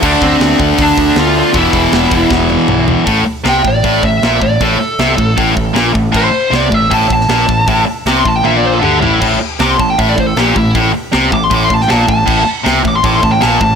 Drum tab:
CC |x---------------|----------------|----------------|----------------|
HH |--o-o---o-o-o-o-|o-o-o-o---------|o---o---o---o---|o---o---o---o---|
SD |----o-------o---|----o---o-------|----o-------o---|----o-------o---|
T1 |----------------|----------o-----|----------------|----------------|
T2 |----------------|------------o---|----------------|----------------|
FT |----------------|--------------o-|----------------|----------------|
BD |o-o---o-o-o-----|o-o---o-o-------|o-----o-o-o---o-|o-----o-o-o---o-|

CC |x---------------|----------------|x---------------|----------------|
HH |----o---o---o---|o---o-----------|----o---o---o---|o---o---o---o---|
SD |----o------oo---|----o-----------|----o-------o---|----o------oo---|
T1 |----------------|--------o-------|----------------|----------------|
T2 |----------------|------------o---|----------------|----------------|
FT |----------------|--------------o-|----------------|----------------|
BD |o-----o-o-o---o-|o-----o---------|o-----o-o-o---o-|o-----o-o-o---o-|

CC |x---------------|
HH |----o---o---o---|
SD |----o-------o---|
T1 |----------------|
T2 |----------------|
FT |----------------|
BD |o-----o-o-o---o-|